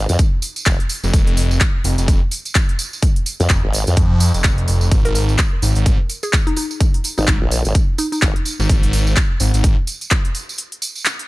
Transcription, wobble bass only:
0, 0, Header, 1, 2, 480
1, 0, Start_track
1, 0, Key_signature, -4, "minor"
1, 0, Tempo, 472441
1, 1153, Time_signature, 4, 2, 24, 8
1, 11459, End_track
2, 0, Start_track
2, 0, Title_t, "Wobble bass"
2, 0, Program_c, 0, 39
2, 93, Note_on_c, 0, 41, 104
2, 177, Note_off_c, 0, 41, 0
2, 673, Note_on_c, 0, 29, 99
2, 790, Note_off_c, 0, 29, 0
2, 3453, Note_on_c, 0, 41, 97
2, 3537, Note_off_c, 0, 41, 0
2, 3693, Note_on_c, 0, 32, 98
2, 3910, Note_off_c, 0, 32, 0
2, 3932, Note_on_c, 0, 41, 101
2, 4017, Note_off_c, 0, 41, 0
2, 7294, Note_on_c, 0, 32, 96
2, 7378, Note_off_c, 0, 32, 0
2, 7533, Note_on_c, 0, 34, 101
2, 7751, Note_off_c, 0, 34, 0
2, 7773, Note_on_c, 0, 32, 98
2, 7857, Note_off_c, 0, 32, 0
2, 8354, Note_on_c, 0, 32, 100
2, 8471, Note_off_c, 0, 32, 0
2, 11459, End_track
0, 0, End_of_file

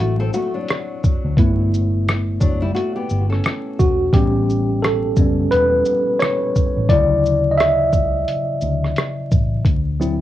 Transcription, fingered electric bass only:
0, 0, Header, 1, 2, 480
1, 0, Start_track
1, 0, Key_signature, 2, "major"
1, 0, Tempo, 689655
1, 954, Time_signature, 4, 2, 24, 8
1, 7107, End_track
2, 0, Start_track
2, 0, Title_t, "Fingered electric bass"
2, 0, Program_c, 0, 33
2, 0, Note_on_c, 0, 33, 85
2, 199, Note_off_c, 0, 33, 0
2, 866, Note_on_c, 0, 38, 93
2, 943, Note_off_c, 0, 38, 0
2, 957, Note_on_c, 0, 31, 106
2, 1648, Note_off_c, 0, 31, 0
2, 1681, Note_on_c, 0, 30, 98
2, 1880, Note_off_c, 0, 30, 0
2, 2162, Note_on_c, 0, 31, 86
2, 2361, Note_off_c, 0, 31, 0
2, 2644, Note_on_c, 0, 28, 74
2, 2842, Note_off_c, 0, 28, 0
2, 2876, Note_on_c, 0, 33, 97
2, 3567, Note_off_c, 0, 33, 0
2, 3600, Note_on_c, 0, 30, 106
2, 3800, Note_off_c, 0, 30, 0
2, 3843, Note_on_c, 0, 28, 89
2, 4041, Note_off_c, 0, 28, 0
2, 4709, Note_on_c, 0, 33, 92
2, 4785, Note_off_c, 0, 33, 0
2, 4798, Note_on_c, 0, 38, 92
2, 5488, Note_off_c, 0, 38, 0
2, 5522, Note_on_c, 0, 37, 96
2, 5721, Note_off_c, 0, 37, 0
2, 6001, Note_on_c, 0, 38, 80
2, 6200, Note_off_c, 0, 38, 0
2, 6488, Note_on_c, 0, 33, 76
2, 6684, Note_off_c, 0, 33, 0
2, 6718, Note_on_c, 0, 38, 96
2, 7107, Note_off_c, 0, 38, 0
2, 7107, End_track
0, 0, End_of_file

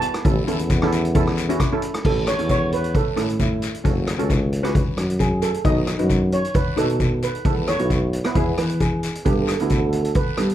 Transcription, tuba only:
0, 0, Header, 1, 2, 480
1, 0, Start_track
1, 0, Key_signature, 3, "major"
1, 0, Tempo, 450450
1, 263, Time_signature, 4, 2, 24, 8
1, 11238, End_track
2, 0, Start_track
2, 0, Title_t, "Tuba"
2, 0, Program_c, 0, 58
2, 268, Note_on_c, 0, 33, 89
2, 503, Note_on_c, 0, 40, 83
2, 519, Note_off_c, 0, 33, 0
2, 609, Note_off_c, 0, 40, 0
2, 635, Note_on_c, 0, 40, 105
2, 1700, Note_off_c, 0, 40, 0
2, 2184, Note_on_c, 0, 33, 78
2, 2492, Note_off_c, 0, 33, 0
2, 2544, Note_on_c, 0, 40, 89
2, 3249, Note_off_c, 0, 40, 0
2, 3377, Note_on_c, 0, 45, 78
2, 3987, Note_off_c, 0, 45, 0
2, 4102, Note_on_c, 0, 30, 84
2, 4411, Note_off_c, 0, 30, 0
2, 4465, Note_on_c, 0, 37, 86
2, 5171, Note_off_c, 0, 37, 0
2, 5297, Note_on_c, 0, 42, 81
2, 5908, Note_off_c, 0, 42, 0
2, 6018, Note_on_c, 0, 35, 81
2, 6330, Note_off_c, 0, 35, 0
2, 6384, Note_on_c, 0, 42, 96
2, 6849, Note_off_c, 0, 42, 0
2, 7218, Note_on_c, 0, 47, 82
2, 7829, Note_off_c, 0, 47, 0
2, 7939, Note_on_c, 0, 40, 83
2, 8251, Note_off_c, 0, 40, 0
2, 8303, Note_on_c, 0, 35, 89
2, 8808, Note_off_c, 0, 35, 0
2, 8905, Note_on_c, 0, 40, 93
2, 9108, Note_off_c, 0, 40, 0
2, 9145, Note_on_c, 0, 52, 82
2, 9753, Note_off_c, 0, 52, 0
2, 9863, Note_on_c, 0, 43, 84
2, 10173, Note_off_c, 0, 43, 0
2, 10238, Note_on_c, 0, 38, 93
2, 10938, Note_off_c, 0, 38, 0
2, 11067, Note_on_c, 0, 55, 78
2, 11238, Note_off_c, 0, 55, 0
2, 11238, End_track
0, 0, End_of_file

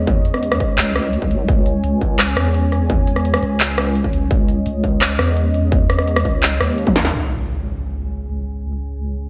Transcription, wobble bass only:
0, 0, Header, 1, 2, 480
1, 0, Start_track
1, 0, Key_signature, 4, "minor"
1, 0, Tempo, 352941
1, 101, Time_signature, 4, 2, 24, 8
1, 12638, End_track
2, 0, Start_track
2, 0, Title_t, "Wobble bass"
2, 0, Program_c, 0, 39
2, 0, Note_on_c, 0, 40, 94
2, 800, Note_off_c, 0, 40, 0
2, 1060, Note_on_c, 0, 37, 99
2, 2001, Note_off_c, 0, 37, 0
2, 2021, Note_on_c, 0, 37, 100
2, 2481, Note_off_c, 0, 37, 0
2, 2504, Note_on_c, 0, 37, 98
2, 3203, Note_off_c, 0, 37, 0
2, 3221, Note_on_c, 0, 40, 96
2, 4641, Note_off_c, 0, 40, 0
2, 4662, Note_on_c, 0, 37, 99
2, 5602, Note_off_c, 0, 37, 0
2, 5617, Note_on_c, 0, 37, 93
2, 5840, Note_off_c, 0, 37, 0
2, 5860, Note_on_c, 0, 37, 103
2, 6321, Note_off_c, 0, 37, 0
2, 6343, Note_on_c, 0, 37, 105
2, 7042, Note_off_c, 0, 37, 0
2, 7059, Note_on_c, 0, 40, 96
2, 8480, Note_off_c, 0, 40, 0
2, 8501, Note_on_c, 0, 37, 100
2, 8961, Note_off_c, 0, 37, 0
2, 8984, Note_on_c, 0, 39, 92
2, 9683, Note_off_c, 0, 39, 0
2, 9706, Note_on_c, 0, 37, 83
2, 12638, Note_off_c, 0, 37, 0
2, 12638, End_track
0, 0, End_of_file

